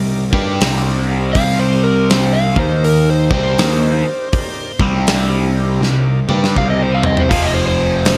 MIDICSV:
0, 0, Header, 1, 6, 480
1, 0, Start_track
1, 0, Key_signature, -3, "minor"
1, 0, Tempo, 743494
1, 879, Time_signature, 4, 2, 24, 8
1, 5277, End_track
2, 0, Start_track
2, 0, Title_t, "Electric slide guitar"
2, 0, Program_c, 0, 29
2, 860, Note_on_c, 0, 77, 89
2, 1025, Note_off_c, 0, 77, 0
2, 1029, Note_on_c, 0, 72, 80
2, 1185, Note_on_c, 0, 70, 89
2, 1189, Note_off_c, 0, 72, 0
2, 1348, Note_off_c, 0, 70, 0
2, 1355, Note_on_c, 0, 72, 87
2, 1504, Note_on_c, 0, 77, 90
2, 1513, Note_off_c, 0, 72, 0
2, 1667, Note_off_c, 0, 77, 0
2, 1673, Note_on_c, 0, 72, 75
2, 1832, Note_off_c, 0, 72, 0
2, 1838, Note_on_c, 0, 70, 88
2, 1994, Note_off_c, 0, 70, 0
2, 2001, Note_on_c, 0, 72, 87
2, 2151, Note_off_c, 0, 72, 0
2, 2159, Note_on_c, 0, 72, 101
2, 3094, Note_off_c, 0, 72, 0
2, 4247, Note_on_c, 0, 77, 69
2, 4324, Note_off_c, 0, 77, 0
2, 4327, Note_on_c, 0, 75, 70
2, 4391, Note_off_c, 0, 75, 0
2, 4406, Note_on_c, 0, 72, 82
2, 4483, Note_on_c, 0, 77, 91
2, 4530, Note_off_c, 0, 77, 0
2, 4538, Note_off_c, 0, 72, 0
2, 4560, Note_on_c, 0, 75, 85
2, 4646, Note_on_c, 0, 72, 88
2, 4656, Note_off_c, 0, 75, 0
2, 4708, Note_on_c, 0, 77, 88
2, 4710, Note_off_c, 0, 72, 0
2, 4790, Note_on_c, 0, 75, 83
2, 4809, Note_off_c, 0, 77, 0
2, 4861, Note_off_c, 0, 75, 0
2, 4868, Note_on_c, 0, 72, 77
2, 4949, Note_off_c, 0, 72, 0
2, 4956, Note_on_c, 0, 72, 90
2, 5277, Note_off_c, 0, 72, 0
2, 5277, End_track
3, 0, Start_track
3, 0, Title_t, "Tonewheel organ"
3, 0, Program_c, 1, 16
3, 0, Note_on_c, 1, 63, 82
3, 0, Note_on_c, 1, 67, 80
3, 0, Note_on_c, 1, 70, 74
3, 0, Note_on_c, 1, 74, 96
3, 159, Note_off_c, 1, 63, 0
3, 159, Note_off_c, 1, 70, 0
3, 160, Note_off_c, 1, 67, 0
3, 162, Note_off_c, 1, 74, 0
3, 194, Note_on_c, 1, 51, 111
3, 195, Note_on_c, 1, 74, 125
3, 197, Note_on_c, 1, 70, 113
3, 200, Note_on_c, 1, 67, 95
3, 359, Note_off_c, 1, 51, 0
3, 359, Note_off_c, 1, 74, 0
3, 360, Note_off_c, 1, 70, 0
3, 361, Note_off_c, 1, 67, 0
3, 380, Note_on_c, 1, 70, 107
3, 381, Note_on_c, 1, 63, 113
3, 382, Note_on_c, 1, 82, 72
3, 384, Note_on_c, 1, 67, 96
3, 387, Note_on_c, 1, 74, 127
3, 529, Note_off_c, 1, 82, 0
3, 543, Note_on_c, 1, 79, 69
3, 643, Note_off_c, 1, 63, 0
3, 643, Note_off_c, 1, 70, 0
3, 645, Note_off_c, 1, 67, 0
3, 646, Note_off_c, 1, 74, 0
3, 685, Note_off_c, 1, 79, 0
3, 686, Note_on_c, 1, 63, 83
3, 688, Note_on_c, 1, 75, 68
3, 689, Note_on_c, 1, 67, 81
3, 691, Note_on_c, 1, 74, 90
3, 694, Note_on_c, 1, 70, 73
3, 845, Note_off_c, 1, 63, 0
3, 847, Note_off_c, 1, 67, 0
3, 847, Note_off_c, 1, 74, 0
3, 849, Note_off_c, 1, 70, 0
3, 861, Note_off_c, 1, 75, 0
3, 873, Note_on_c, 1, 63, 97
3, 875, Note_on_c, 1, 67, 78
3, 876, Note_on_c, 1, 74, 98
3, 877, Note_on_c, 1, 70, 78
3, 1130, Note_off_c, 1, 63, 0
3, 1130, Note_off_c, 1, 67, 0
3, 1131, Note_off_c, 1, 74, 0
3, 1132, Note_off_c, 1, 70, 0
3, 1174, Note_on_c, 1, 63, 64
3, 1179, Note_on_c, 1, 67, 57
3, 1180, Note_on_c, 1, 74, 67
3, 1181, Note_on_c, 1, 70, 60
3, 1329, Note_off_c, 1, 63, 0
3, 1332, Note_off_c, 1, 67, 0
3, 1332, Note_off_c, 1, 74, 0
3, 1333, Note_off_c, 1, 70, 0
3, 1347, Note_on_c, 1, 63, 78
3, 1353, Note_on_c, 1, 67, 62
3, 1353, Note_on_c, 1, 70, 66
3, 1353, Note_on_c, 1, 74, 74
3, 1607, Note_off_c, 1, 63, 0
3, 1610, Note_off_c, 1, 67, 0
3, 1610, Note_off_c, 1, 70, 0
3, 1610, Note_off_c, 1, 74, 0
3, 1648, Note_on_c, 1, 58, 69
3, 1648, Note_on_c, 1, 70, 64
3, 1650, Note_on_c, 1, 63, 62
3, 1651, Note_on_c, 1, 75, 78
3, 2041, Note_off_c, 1, 58, 0
3, 2041, Note_off_c, 1, 70, 0
3, 2043, Note_off_c, 1, 63, 0
3, 2043, Note_off_c, 1, 75, 0
3, 2137, Note_on_c, 1, 67, 73
3, 2138, Note_on_c, 1, 63, 74
3, 2138, Note_on_c, 1, 70, 77
3, 2141, Note_on_c, 1, 74, 89
3, 2526, Note_off_c, 1, 67, 0
3, 2527, Note_off_c, 1, 63, 0
3, 2527, Note_off_c, 1, 70, 0
3, 2528, Note_off_c, 1, 74, 0
3, 2610, Note_on_c, 1, 67, 68
3, 2613, Note_on_c, 1, 70, 65
3, 2614, Note_on_c, 1, 74, 75
3, 2616, Note_on_c, 1, 63, 68
3, 2767, Note_off_c, 1, 67, 0
3, 2769, Note_off_c, 1, 70, 0
3, 2770, Note_off_c, 1, 63, 0
3, 2770, Note_off_c, 1, 74, 0
3, 2788, Note_on_c, 1, 63, 102
3, 2789, Note_on_c, 1, 74, 115
3, 2790, Note_on_c, 1, 67, 87
3, 2796, Note_on_c, 1, 70, 101
3, 3048, Note_off_c, 1, 63, 0
3, 3048, Note_off_c, 1, 67, 0
3, 3048, Note_off_c, 1, 74, 0
3, 3051, Note_off_c, 1, 70, 0
3, 3096, Note_on_c, 1, 67, 68
3, 3098, Note_on_c, 1, 63, 73
3, 3100, Note_on_c, 1, 70, 69
3, 3103, Note_on_c, 1, 72, 90
3, 3250, Note_off_c, 1, 67, 0
3, 3251, Note_off_c, 1, 63, 0
3, 3252, Note_off_c, 1, 70, 0
3, 3254, Note_off_c, 1, 72, 0
3, 3275, Note_on_c, 1, 74, 83
3, 3276, Note_on_c, 1, 63, 81
3, 3277, Note_on_c, 1, 67, 82
3, 3278, Note_on_c, 1, 70, 79
3, 3530, Note_off_c, 1, 74, 0
3, 3531, Note_off_c, 1, 63, 0
3, 3532, Note_off_c, 1, 67, 0
3, 3532, Note_off_c, 1, 70, 0
3, 3582, Note_on_c, 1, 67, 77
3, 3584, Note_on_c, 1, 63, 81
3, 3587, Note_on_c, 1, 70, 68
3, 3588, Note_on_c, 1, 72, 85
3, 3732, Note_off_c, 1, 63, 0
3, 3733, Note_off_c, 1, 67, 0
3, 3734, Note_off_c, 1, 70, 0
3, 3736, Note_off_c, 1, 72, 0
3, 3740, Note_on_c, 1, 63, 94
3, 3742, Note_on_c, 1, 70, 80
3, 3742, Note_on_c, 1, 74, 95
3, 3743, Note_on_c, 1, 67, 83
3, 4002, Note_off_c, 1, 63, 0
3, 4004, Note_off_c, 1, 67, 0
3, 4004, Note_off_c, 1, 70, 0
3, 4004, Note_off_c, 1, 74, 0
3, 4051, Note_on_c, 1, 67, 97
3, 4052, Note_on_c, 1, 74, 127
3, 4054, Note_on_c, 1, 70, 100
3, 4056, Note_on_c, 1, 51, 114
3, 4207, Note_off_c, 1, 67, 0
3, 4208, Note_off_c, 1, 74, 0
3, 4209, Note_off_c, 1, 51, 0
3, 4209, Note_off_c, 1, 70, 0
3, 4227, Note_on_c, 1, 63, 94
3, 4231, Note_on_c, 1, 67, 87
3, 4232, Note_on_c, 1, 70, 84
3, 4233, Note_on_c, 1, 74, 97
3, 4486, Note_off_c, 1, 63, 0
3, 4488, Note_off_c, 1, 67, 0
3, 4488, Note_off_c, 1, 70, 0
3, 4489, Note_off_c, 1, 74, 0
3, 4527, Note_on_c, 1, 63, 71
3, 4530, Note_on_c, 1, 67, 61
3, 4531, Note_on_c, 1, 70, 70
3, 4532, Note_on_c, 1, 74, 78
3, 4685, Note_off_c, 1, 63, 0
3, 4686, Note_off_c, 1, 67, 0
3, 4687, Note_off_c, 1, 70, 0
3, 4687, Note_off_c, 1, 74, 0
3, 4701, Note_on_c, 1, 67, 79
3, 4706, Note_on_c, 1, 63, 88
3, 4709, Note_on_c, 1, 68, 71
3, 4713, Note_on_c, 1, 72, 100
3, 4962, Note_off_c, 1, 67, 0
3, 4965, Note_off_c, 1, 63, 0
3, 4966, Note_off_c, 1, 68, 0
3, 4968, Note_off_c, 1, 72, 0
3, 5016, Note_on_c, 1, 63, 63
3, 5018, Note_on_c, 1, 72, 79
3, 5021, Note_on_c, 1, 67, 58
3, 5021, Note_on_c, 1, 68, 59
3, 5168, Note_off_c, 1, 63, 0
3, 5169, Note_off_c, 1, 72, 0
3, 5171, Note_off_c, 1, 67, 0
3, 5171, Note_off_c, 1, 68, 0
3, 5187, Note_on_c, 1, 63, 69
3, 5190, Note_on_c, 1, 68, 64
3, 5191, Note_on_c, 1, 72, 73
3, 5192, Note_on_c, 1, 67, 72
3, 5277, Note_off_c, 1, 63, 0
3, 5277, Note_off_c, 1, 67, 0
3, 5277, Note_off_c, 1, 68, 0
3, 5277, Note_off_c, 1, 72, 0
3, 5277, End_track
4, 0, Start_track
4, 0, Title_t, "Overdriven electric guitar"
4, 0, Program_c, 2, 29
4, 0, Note_on_c, 2, 48, 77
4, 0, Note_on_c, 2, 55, 78
4, 156, Note_off_c, 2, 48, 0
4, 157, Note_off_c, 2, 55, 0
4, 214, Note_on_c, 2, 55, 90
4, 222, Note_on_c, 2, 62, 84
4, 223, Note_on_c, 2, 67, 92
4, 391, Note_off_c, 2, 55, 0
4, 395, Note_off_c, 2, 62, 0
4, 396, Note_off_c, 2, 67, 0
4, 398, Note_on_c, 2, 48, 88
4, 401, Note_on_c, 2, 55, 87
4, 402, Note_on_c, 2, 60, 98
4, 874, Note_off_c, 2, 48, 0
4, 875, Note_off_c, 2, 55, 0
4, 876, Note_off_c, 2, 60, 0
4, 881, Note_on_c, 2, 48, 104
4, 883, Note_on_c, 2, 55, 109
4, 886, Note_on_c, 2, 60, 117
4, 1661, Note_off_c, 2, 48, 0
4, 1661, Note_on_c, 2, 51, 90
4, 1666, Note_off_c, 2, 55, 0
4, 1666, Note_on_c, 2, 58, 96
4, 1667, Note_off_c, 2, 60, 0
4, 1667, Note_on_c, 2, 63, 97
4, 2131, Note_off_c, 2, 51, 0
4, 2134, Note_off_c, 2, 58, 0
4, 2134, Note_off_c, 2, 63, 0
4, 2138, Note_on_c, 2, 48, 85
4, 2145, Note_on_c, 2, 55, 94
4, 2148, Note_on_c, 2, 60, 98
4, 2314, Note_off_c, 2, 48, 0
4, 2316, Note_off_c, 2, 55, 0
4, 2319, Note_off_c, 2, 60, 0
4, 2319, Note_on_c, 2, 58, 101
4, 2320, Note_on_c, 2, 51, 85
4, 2325, Note_on_c, 2, 63, 109
4, 2610, Note_off_c, 2, 51, 0
4, 2610, Note_off_c, 2, 58, 0
4, 2613, Note_off_c, 2, 63, 0
4, 3103, Note_on_c, 2, 48, 76
4, 3105, Note_on_c, 2, 55, 88
4, 3109, Note_on_c, 2, 60, 87
4, 3752, Note_off_c, 2, 48, 0
4, 3753, Note_off_c, 2, 55, 0
4, 3759, Note_off_c, 2, 60, 0
4, 3759, Note_on_c, 2, 48, 73
4, 3761, Note_on_c, 2, 55, 73
4, 3999, Note_off_c, 2, 48, 0
4, 3999, Note_off_c, 2, 55, 0
4, 4063, Note_on_c, 2, 55, 80
4, 4064, Note_on_c, 2, 62, 97
4, 4068, Note_on_c, 2, 67, 95
4, 4233, Note_off_c, 2, 55, 0
4, 4236, Note_off_c, 2, 62, 0
4, 4236, Note_on_c, 2, 48, 94
4, 4238, Note_off_c, 2, 67, 0
4, 4241, Note_on_c, 2, 55, 95
4, 4244, Note_on_c, 2, 60, 97
4, 4711, Note_off_c, 2, 48, 0
4, 4713, Note_off_c, 2, 55, 0
4, 4715, Note_off_c, 2, 60, 0
4, 4716, Note_on_c, 2, 41, 94
4, 4719, Note_on_c, 2, 48, 120
4, 4725, Note_on_c, 2, 53, 116
4, 5277, Note_off_c, 2, 41, 0
4, 5277, Note_off_c, 2, 48, 0
4, 5277, Note_off_c, 2, 53, 0
4, 5277, End_track
5, 0, Start_track
5, 0, Title_t, "Picked electric bass"
5, 0, Program_c, 3, 34
5, 0, Note_on_c, 3, 36, 79
5, 192, Note_off_c, 3, 36, 0
5, 213, Note_on_c, 3, 43, 102
5, 383, Note_off_c, 3, 43, 0
5, 397, Note_on_c, 3, 36, 98
5, 852, Note_off_c, 3, 36, 0
5, 873, Note_on_c, 3, 36, 83
5, 1631, Note_off_c, 3, 36, 0
5, 1657, Note_on_c, 3, 39, 98
5, 2113, Note_off_c, 3, 39, 0
5, 2135, Note_on_c, 3, 36, 93
5, 2305, Note_off_c, 3, 36, 0
5, 2319, Note_on_c, 3, 39, 91
5, 2598, Note_off_c, 3, 39, 0
5, 3096, Note_on_c, 3, 36, 88
5, 3732, Note_off_c, 3, 36, 0
5, 3752, Note_on_c, 3, 36, 76
5, 4034, Note_off_c, 3, 36, 0
5, 4061, Note_on_c, 3, 43, 103
5, 4227, Note_off_c, 3, 43, 0
5, 4240, Note_on_c, 3, 36, 87
5, 4693, Note_off_c, 3, 36, 0
5, 4721, Note_on_c, 3, 29, 83
5, 5277, Note_off_c, 3, 29, 0
5, 5277, End_track
6, 0, Start_track
6, 0, Title_t, "Drums"
6, 212, Note_on_c, 9, 36, 102
6, 276, Note_off_c, 9, 36, 0
6, 391, Note_on_c, 9, 46, 58
6, 398, Note_on_c, 9, 38, 105
6, 456, Note_off_c, 9, 46, 0
6, 463, Note_off_c, 9, 38, 0
6, 870, Note_on_c, 9, 46, 57
6, 873, Note_on_c, 9, 36, 90
6, 935, Note_off_c, 9, 46, 0
6, 937, Note_off_c, 9, 36, 0
6, 1355, Note_on_c, 9, 46, 57
6, 1361, Note_on_c, 9, 38, 105
6, 1419, Note_off_c, 9, 46, 0
6, 1426, Note_off_c, 9, 38, 0
6, 1654, Note_on_c, 9, 36, 102
6, 1719, Note_off_c, 9, 36, 0
6, 1835, Note_on_c, 9, 46, 51
6, 1900, Note_off_c, 9, 46, 0
6, 2135, Note_on_c, 9, 36, 102
6, 2200, Note_off_c, 9, 36, 0
6, 2313, Note_on_c, 9, 46, 59
6, 2320, Note_on_c, 9, 38, 107
6, 2378, Note_off_c, 9, 46, 0
6, 2384, Note_off_c, 9, 38, 0
6, 2794, Note_on_c, 9, 46, 52
6, 2796, Note_on_c, 9, 36, 101
6, 2858, Note_off_c, 9, 46, 0
6, 2861, Note_off_c, 9, 36, 0
6, 3096, Note_on_c, 9, 36, 98
6, 3160, Note_off_c, 9, 36, 0
6, 3272, Note_on_c, 9, 46, 59
6, 3279, Note_on_c, 9, 38, 108
6, 3337, Note_off_c, 9, 46, 0
6, 3343, Note_off_c, 9, 38, 0
6, 3765, Note_on_c, 9, 38, 55
6, 3830, Note_off_c, 9, 38, 0
6, 4059, Note_on_c, 9, 47, 68
6, 4123, Note_off_c, 9, 47, 0
6, 4157, Note_on_c, 9, 38, 67
6, 4221, Note_off_c, 9, 38, 0
6, 4238, Note_on_c, 9, 36, 84
6, 4302, Note_off_c, 9, 36, 0
6, 4541, Note_on_c, 9, 43, 91
6, 4606, Note_off_c, 9, 43, 0
6, 4629, Note_on_c, 9, 43, 84
6, 4694, Note_off_c, 9, 43, 0
6, 4719, Note_on_c, 9, 36, 108
6, 4723, Note_on_c, 9, 46, 57
6, 4723, Note_on_c, 9, 49, 91
6, 4783, Note_off_c, 9, 36, 0
6, 4787, Note_off_c, 9, 46, 0
6, 4787, Note_off_c, 9, 49, 0
6, 5198, Note_on_c, 9, 46, 59
6, 5205, Note_on_c, 9, 38, 106
6, 5263, Note_off_c, 9, 46, 0
6, 5269, Note_off_c, 9, 38, 0
6, 5277, End_track
0, 0, End_of_file